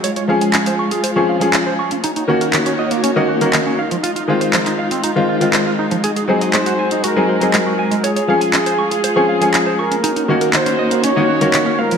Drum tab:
HH |xx-xxx-xx--xx--x|xx-xxx-xx--xx--x|xx-xxx-xx--xx--x|xx-xxx-xx--xx--x|
CP |----x-------x---|----x-------x---|----xx------x---|----x-------x---|

HH |xx-xxx-xx--xx--x|xx-xxx-xx--xx--x|
CP |----x-------x---|----x-------x---|